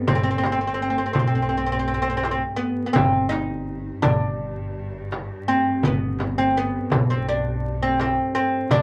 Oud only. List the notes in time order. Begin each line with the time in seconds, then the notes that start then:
0.08 C4
0.15 C4
0.23 C4
0.31 C4
0.38 C4
0.46 C4
0.52 C4
0.61 C4
0.67 C4
0.74 C4
0.82 C4
0.90 C4
0.98 C4
1.06 C4
1.13 C4
1.19 C4
1.27 C4
1.35 C4
1.42 C4
1.49 C4
1.57 C4
1.66 C4
1.72 C4
1.79 C4
1.88 C4
1.94 C4
2.02 C4
2.10 C4
2.17 C4
2.25 C4
2.31 C4
2.56 B3
2.86 B3
2.93 C4
3.29 D#4
4.02 D4
5.48 C4
5.85 B3
6.38 C4
6.57 B3
7.10 C4
7.29 D4
7.83 C4
8.01 C4
8.35 C4
8.71 D4